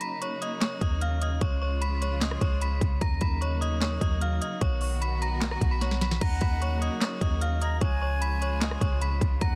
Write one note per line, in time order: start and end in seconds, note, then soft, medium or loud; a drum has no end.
0.00 4.57 C#3 medium
0.00 1.37 F#3 medium
0.00 1.40 A#3 medium
0.00 1.40 D#4 medium
0.00 0.17 B5 medium
0.00 0.18 B6 medium
0.00 closed hi-hat medium
0.21 0.38 C#5 medium
0.21 0.38 C#6 medium
0.21 closed hi-hat medium
0.42 0.58 D#5 medium
0.42 0.58 D#6 medium
0.42 closed hi-hat medium
0.61 0.78 C#5 medium
0.61 0.77 C#6 loud
0.61 snare loud
0.61 clap medium
0.61 closed hi-hat medium
0.81 1.39 D#2 loud
0.81 0.98 D#5 medium
0.81 0.98 D#6 medium
0.81 kick medium
0.81 closed hi-hat medium
1.01 1.18 F5 medium
1.01 1.18 F6 medium
1.01 closed hi-hat medium
1.22 1.38 D#5 medium
1.22 1.38 D#6 medium
1.22 closed hi-hat medium
1.41 2.37 C#2 loud
1.41 3.00 F3 medium
1.41 3.00 G#3 medium
1.41 3.00 F4 medium
1.41 1.58 C#5 medium
1.41 1.58 C#6 medium
1.41 kick loud
1.41 closed hi-hat medium
1.62 1.78 C#5 medium
1.62 1.78 C#6 medium
1.81 1.98 B5 loud
1.81 1.98 B6 medium
1.81 closed hi-hat medium
2.01 2.18 C#5 medium
2.01 2.18 C#6 medium
2.01 closed hi-hat medium
2.21 2.38 D#5 medium
2.21 2.38 D#6 medium
2.21 snare loud
2.21 clap loud
2.21 closed hi-hat medium
2.31 cross-stick medium
2.41 2.80 C#2 loud
2.41 2.58 C#5 medium
2.41 2.58 C#6 medium
2.41 kick medium
2.41 closed hi-hat medium
2.61 2.78 B5 medium
2.61 2.78 B6 medium
2.61 closed hi-hat medium
2.81 3.01 C#2 loud
2.81 kick loud
2.81 closed hi-hat medium
3.01 3.21 D#2 loud
3.01 6.18 F#3 medium
3.01 4.60 A#3 medium
3.01 4.60 D#4 medium
3.01 3.18 A#5 loud
3.01 3.18 A#6 medium
3.01 kick loud
3.01 closed hi-hat medium
3.21 3.98 D#2 loud
3.21 3.37 B5 loud
3.21 3.38 B6 medium
3.21 kick medium
3.21 closed hi-hat medium
3.41 3.58 C#5 medium
3.41 3.57 C#6 medium
3.41 closed hi-hat medium
3.61 3.78 D#5 medium
3.61 3.78 D#6 loud
3.61 closed hi-hat medium
3.81 3.98 C#5 medium
3.81 3.98 C#6 medium
3.81 snare loud
3.81 clap medium
3.81 closed hi-hat medium
4.01 4.40 D#2 loud
4.01 4.18 D#5 medium
4.01 4.17 D#6 medium
4.01 kick medium
4.01 closed hi-hat medium
4.21 4.38 F5 medium
4.21 4.38 F6 medium
4.21 closed hi-hat medium
4.41 4.58 D#5 medium
4.41 4.58 D#6 medium
4.41 closed hi-hat medium
4.61 5.57 B1 loud
4.61 6.20 D#3 medium
4.61 6.20 B3 medium
4.61 6.20 F#4 medium
4.61 4.78 C#5 medium
4.61 4.78 C#6 loud
4.61 kick loud
4.61 closed hi-hat medium
4.81 4.98 C#5 medium
4.81 4.98 C#6 medium
4.81 open hi-hat medium
5.01 5.18 B5 medium
5.01 5.18 B6 medium
5.01 closed hi-hat medium
5.22 5.50 A#5 medium
5.22 5.50 A#6 medium
5.22 closed hi-hat medium
5.41 snare loud
5.41 clap medium
5.41 closed hi-hat medium
5.51 5.68 A#5 medium
5.51 5.68 A#6 medium
5.51 cross-stick medium
5.61 6.19 B1 loud
5.61 kick medium
5.61 closed hi-hat medium
5.71 5.79 B5 medium
5.71 5.80 B6 medium
5.81 5.98 C#5 medium
5.81 5.98 C#6 medium
5.81 snare medium
5.81 closed hi-hat medium
5.91 snare medium
6.01 6.18 B5 medium
6.01 6.18 B6 medium
6.01 snare medium
6.01 closed hi-hat medium
6.11 snare medium
6.21 6.41 D#2 loud
6.21 7.80 C#3 medium
6.21 7.80 F#3 medium
6.21 7.80 A#3 medium
6.21 7.80 D#4 medium
6.21 6.97 F#5 loud
6.21 6.38 A#5 loud
6.21 6.38 A#6 medium
6.21 kick loud
6.21 closed hi-hat medium
6.21 crash loud
6.41 6.89 D#2 loud
6.41 6.57 B5 medium
6.41 6.58 B6 medium
6.41 kick loud
6.41 closed hi-hat medium
6.62 6.78 C#5 medium
6.62 6.78 C#6 medium
6.62 closed hi-hat medium
6.82 6.98 D#5 medium
6.82 6.98 D#6 medium
6.82 closed hi-hat medium
7.01 7.18 C#5 medium
7.01 7.17 C#6 loud
7.01 snare loud
7.01 clap loud
7.01 closed hi-hat medium
7.21 7.79 D#2 loud
7.21 7.38 D#5 medium
7.21 7.38 D#6 medium
7.21 kick medium
7.21 closed hi-hat medium
7.41 7.58 F5 medium
7.41 7.58 F6 medium
7.41 closed hi-hat medium
7.62 7.78 D#5 medium
7.62 7.80 A#5 medium
7.62 7.78 D#6 medium
7.62 closed hi-hat medium
7.81 8.77 C#2 loud
7.81 9.55 C#3 medium
7.81 9.40 F3 medium
7.81 9.40 G#3 medium
7.81 9.40 F4 medium
7.81 7.98 C#5 medium
7.81 8.98 G#5 loud
7.81 7.98 C#6 medium
7.81 kick loud
7.81 closed hi-hat medium
8.02 8.18 C#5 medium
8.02 8.18 C#6 medium
8.21 8.38 B5 loud
8.21 8.38 B6 medium
8.21 closed hi-hat medium
8.41 8.58 C#5 medium
8.41 8.58 C#6 medium
8.41 closed hi-hat medium
8.61 8.78 D#5 medium
8.61 8.78 D#6 medium
8.61 snare loud
8.61 clap medium
8.61 closed hi-hat medium
8.71 cross-stick medium
8.81 9.20 C#2 loud
8.81 8.98 C#5 medium
8.81 8.98 C#6 medium
8.81 kick medium
8.81 closed hi-hat medium
9.01 9.18 B5 medium
9.01 9.18 B6 medium
9.01 closed hi-hat medium
9.21 9.41 C#2 loud
9.21 kick loud
9.21 closed hi-hat medium
9.41 9.55 D#2 loud
9.41 9.55 F#3 medium
9.41 9.55 A#3 medium
9.41 9.55 D#4 medium
9.41 9.55 F#5 loud
9.41 9.55 A#5 loud
9.41 9.55 A#6 medium
9.41 kick loud
9.41 closed hi-hat medium